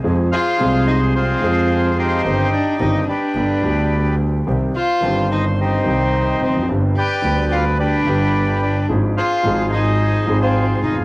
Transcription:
<<
  \new Staff \with { instrumentName = "Bandoneon" } { \time 4/4 \key c \minor \tempo 4 = 109 << { r8 f''4 ees''8 c''4. c''8~ | c''8 d''8 ees''8 d''2 r8 | r8 f''4 ees''8 c''4. c''8 | r8 g''4 f''8 d''4. d''8 |
r8 f''4 ees''4~ ees''16 c''8. ees''8 | } \\ { r8 <aes' c''>4. <f' aes'>4. <ees' g'>8~ | <ees' g'>4. <g' b'>2 r8 | r8 c''4. <ees' g'>2 | r8 <b' d''>4. <g' b'>2 |
r8 <aes' c''>4 <aes' c''>4~ <aes' c''>16 <f' aes'>4~ <f' aes'>16 | } >> }
  \new Staff \with { instrumentName = "Violin" } { \time 4/4 \key c \minor r8 f'4 ees'8 c'4. c'8~ | c'8 d'8 ees'8 d'2 r8 | r8 f'4 ees'8 c'4. c'8 | r8 g'4 f'8 d'4. d'8 |
r8 f'4 ees'4~ ees'16 c'8. ees'8 | }
  \new Staff \with { instrumentName = "Grand piano" } { \clef bass \time 4/4 \key c \minor << { <f, f aes c' aes'>8 r8 <c, c f aes c' aes'>4. <f, f aes c' aes'>4. | <g,, g, ees g c' g'>8 r8 <g,, g, ees g c' g'>8 r8 <g,, g, d g b g'>8 <d, d g b g'>4. | <c, c ees g c' g'>8 r8 <g,, g, ees g c' g'>4. <c, c ees g c' g'>4. | <g,, g, d g b g'>8 r8 <d, d g b g'>4. <g,, g, d g b g'>4. |
<aes,, aes, f aes c' aes'>8 r8 <aes,, aes, f aes c' aes'>4. <aes,, aes, f aes c' aes'>4. | } \\ { r1 | r1 | r2. r8 r32 e,32 f,32 fis,32 | r1 |
r2. r8 r32 e,32 f,32 r32 | } >> }
  \new Staff \with { instrumentName = "Double bass" } { \clef bass \time 4/4 \key c \minor f,8 r8 c,4. f,4. | g,,8 r8 g,,8 r8 g,,8 d,4. | c,8 r8 g,,4. c,4 f,,8 | g,,8 r8 d,4. g,,4. |
aes,,8 r8 aes,,4. aes,,4 f,,8 | }
>>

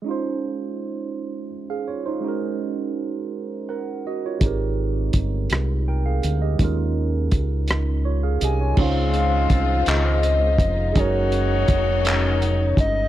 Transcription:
<<
  \new Staff \with { instrumentName = "Soft synth lead" } { \time 6/8 \key des \lydian \tempo 4. = 55 r2. | r2. | r2. | r2 r8 aes''8 |
f''4. ees''4. | des''2~ des''8 ees''8 | }
  \new Staff \with { instrumentName = "Tine electric piano" } { \time 6/8 \key des \lydian << { r2 r16 <aes' f''>16 <f' des''>16 <ees' c''>16~ | <ees' c''>16 r4. r16 <bes' ges''>8 <ges' ees''>16 <f' des''>16~ | <f' des''>16 r4. r16 <bes' g''>16 <aes' f''>8 <g' ees''>16~ | <g' ees''>16 r4. r16 <f' des''>16 <aes' f''>16 <g' ees''>16 <f' des''>16~ |
<f' des''>16 r2 r8. | r2. | } \\ { <aes des' ees' f' c''>2. | <aes des' ees' ges' bes'>2. | <aes c' ees' g' bes'>2. | <g aes des' ees' f' bes'>2. |
<aes des' ees' f' c''>2. | <aes des' ees' ges' bes'>2. | } >> }
  \new Staff \with { instrumentName = "Horn section" } { \time 6/8 \key des \lydian r2. | r2. | r2. | r2. |
<aes c' f'>2~ <aes c' f'>8 r8 | <des' ees' ges'>2~ <des' ees' ges'>8 r8 | }
  \new Staff \with { instrumentName = "String section" } { \time 6/8 \key des \lydian << { r2. | r2. | r2. | r2. |
<ees aes f' c''>2. | <des ges bes ges'>2. | } \\ { r2. | r2. | r2. | r2. |
ees'2.~ | ees'2. | } >> }
  \new Staff \with { instrumentName = "Fingered electric bass" } { \clef bass \time 6/8 \key des \lydian r2. | r2. | aes,,4 g,,8 c,4 d,8 | ees,4 des,4. c,8 |
des,4 c,8 des,4 f,,8 | ges,,4 f,,4. g,,8 | }
  \new DrumStaff \with { instrumentName = "Drums" } \drummode { \time 6/8 r4. r4. | r4. r4. | <hh bd>4 <hh bd>8 <hh ss>4 hh8 | <hh bd>4 <hh bd>8 <hh ss>4 hh8 |
<cymc bd>8 hh8 <hh bd>8 <hc hh>8 hh8 <hh bd>8 | <hh bd>8 hh8 <hh bd>8 <hc hh>8 hh8 <hh bd>8 | }
>>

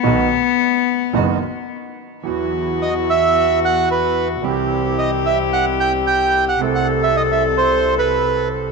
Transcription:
<<
  \new Staff \with { instrumentName = "Bandoneon" } { \time 4/4 \key b \mixolydian \tempo 4 = 110 r1 | \key e \minor r4 dis''8 e''4 fis''8 b'8. r16 | r4 dis''8 e''8 fis''8 g''8 g''8. fis''16~ | fis''16 fis''8 e''16 dis''16 e''8 c''8. b'4 r8 | }
  \new Staff \with { instrumentName = "Cello" } { \time 4/4 \key b \mixolydian b2. r4 | \key e \minor fis'1 | g'1 | a'1 | }
  \new Staff \with { instrumentName = "Bandoneon" } { \time 4/4 \key b \mixolydian <b dis' fis'>8 r4. <b dis' fis'>8 r4. | \key e \minor <b e' fis'>1 | <c' e' g'>1 | <c' a'>1 | }
  \new Staff \with { instrumentName = "Grand piano" } { \clef bass \time 4/4 \key b \mixolydian <b,, b, dis fis b fis'>8 r4. <fis,, fis, dis fis b fis'>8 r4. | \key e \minor <e, e fis b fis'>1 | <c, c e g c' g'>1 | <c, c a c' e'>1 | }
  \new Staff \with { instrumentName = "Double bass" } { \clef bass \time 4/4 \key b \mixolydian b,,8 r4. fis,,8 r4. | \key e \minor e,1 | c,1 | c,1 | }
>>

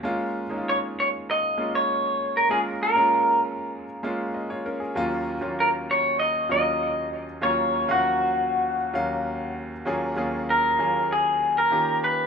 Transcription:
<<
  \new Staff \with { instrumentName = "Clean electric guitar" } { \time 4/4 \key ees \minor \tempo 4 = 98 r4 des''8 des''8 ees''8. des''4 bes'16 | aes'8 bes'4 r2 r8 | r4 bes'8 des''8 ees''8 ees''4 r8 | des''8. ges'2~ ges'8. r8 |
r4 bes'4 aes'8. bes'8. ces''8 | }
  \new Staff \with { instrumentName = "Grand piano" } { \time 4/4 \key ees \minor r1 | r2. ees''16 <f' des''>16 <des' bes'>16 aes'16~ | aes'16 r2. r8. | r1 |
r1 | }
  \new Staff \with { instrumentName = "Grand piano" } { \time 4/4 \key ees \minor <aes bes des' f'>8 r16 <aes bes des' ees' f'>4. r16 <aes bes des' f'>4~ <aes bes des' f'>16 r16 | <aes bes des' f'>8 r16 <aes bes des' f'>4. r16 <aes bes des' f'>4~ <aes bes des' f'>16 r16 | <ees, ges bes des' f'>8 r16 <ees, ges bes des' f'>4. r16 <ees, ges bes des' f'>4~ <ees, ges bes des' f'>16 r16 | <ees, ges bes des' f'>8 r16 <ees, f ges bes des' f''>4. r16 <ees, ges bes des' f''>4~ <ees, ges bes des' f''>16 r16 |
<ees, ges bes des' f' aes'>8 <ees, ges bes des' f' aes'>8. r16 <ees, ges bes des' f' aes'>4. <ees bes des' f' g'>8. r16 | }
>>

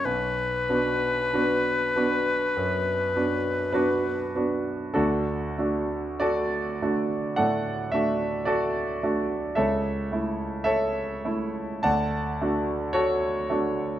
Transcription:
<<
  \new Staff \with { instrumentName = "Oboe" } { \time 4/4 \key b \minor \tempo 4 = 51 b'2.~ b'8 r8 | \key d \major r1 | r1 | }
  \new Staff \with { instrumentName = "Grand piano" } { \time 4/4 \key b \minor << { r2. <d' fis' b'>4 | \key d \major <d' fis' a'>4 <fis' a' d''>4 <a' d'' fis''>8 e''8 <fis' a' d''>4 | <a' cis'' e''>4 <a' cis'' e''>4 <d'' fis'' a''>4 <fis' a' cis''>4 | } \\ { b,,8 <b d' fis'>8 <b d' fis'>8 <b d' fis'>8 fis,8 <b d' fis'>8 <b d'>8 <b d' fis'>8 | d,8 <a d' fis'>4 <a d' fis'>8 a,8 <a d' fis'>4 <a d' fis'>8 | cis,8 <a e'>4 <a e'>8 d,8 <a d' fis'>4 <a d' fis'>8 | } >> }
>>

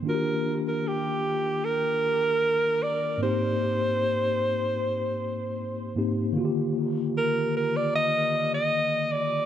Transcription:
<<
  \new Staff \with { instrumentName = "Alto saxophone" } { \time 4/4 \key ees \major \tempo 4 = 76 bes'8. bes'16 g'4 bes'4. d''8 | c''2.~ c''8 r8 | r4 bes'8 bes'16 d''16 ees''8. ees''8. d''8 | }
  \new Staff \with { instrumentName = "Tine electric piano" } { \time 4/4 \key ees \major <ees bes d' f' ges' g'>1 | <aes, bes c' ees' g'>2.~ <aes, bes c' ees' g'>8 <aes, bes c' ees' g'>8 | <d ees bes f' ges' g'>1 | }
>>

